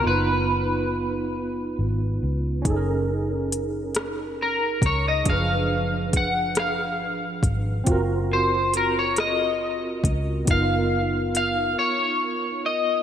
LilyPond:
<<
  \new Staff \with { instrumentName = "Clean electric guitar" } { \time 6/8 \key fis \major \tempo 4. = 46 b'2 r4 | r2 ais'8 cis''16 dis''16 | f''4 fis''8 f''4 r8 | r8 bis'8 ais'16 cis''16 dis''4. |
eis''4 eis''8 cis''4 dis''8 | }
  \new Staff \with { instrumentName = "Tine electric piano" } { \time 6/8 \key fis \major <b dis' eis' b'>2. | <cis' dis' gis' a' ais'>2. | <f d' gis' b'>2. | <bis eis' fis' ais'>2. |
<b dis' eis' ais'>2. | }
  \new Staff \with { instrumentName = "Fingered electric bass" } { \clef bass \time 6/8 \key fis \major fis,,2 gis,,8 cis,8 | fis,,2~ fis,,8 cis,8 | fis,,2 gis,,8 gis,,8 | fis,,2~ fis,,8 cis,8 |
fis,,4. r4. | }
  \new DrumStaff \with { instrumentName = "Drums" } \drummode { \time 6/8 r4. r4. | <hh bd>4 hh8 <hh ss>4 <hh bd>8 | <hh bd>4 <hh bd>8 <hh ss>4 <hh bd>8 | <hh bd>4 hh8 <hh ss>4 <hh bd>8 |
<hh bd>4 hh8 r4. | }
>>